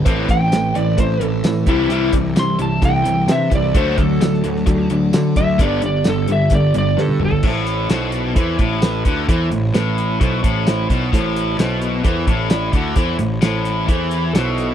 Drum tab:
CC |----------------|----------------|----------------|----------------|
HH |x-x-x-x-x-x-x-x-|x-x-x-x-x-x-x-x-|x-x-x-x-x-x-x-x-|x-x-x-x-x-x-----|
TB |----x-------x---|----x-------x---|----x-------x---|----x-----------|
SD |----o-------o---|----o-------o---|----oo-o----o---|----o-------o---|
T1 |----------------|----------------|----------------|-------------o--|
T2 |----------------|----------------|----------------|--------------o-|
FT |----------------|----------------|----------------|---------------o|
BD |o-o-----o-----o-|--o-----o-----o-|o-o-----o-----o-|o-------o-------|

CC |x---------------|----------------|----------------|----------------|
HH |--x-x-x-x-x-x-x-|x-x-x-x-x-x-x-x-|x-x-x-x-x-x-x-x-|x-x-x-x-x-x-x-x-|
TB |----x-------x---|----x-------x---|----x-------x---|----x-------x---|
SD |----o-------o---|----o-------o---|----o-------o---|----o-------o---|
T1 |----------------|----------------|----------------|----------------|
T2 |----------------|----------------|----------------|----------------|
FT |----------------|----------------|----------------|----------------|
BD |o-------o-o---o-|o-------o-o---o-|o-------o-o---o-|o-------o-------|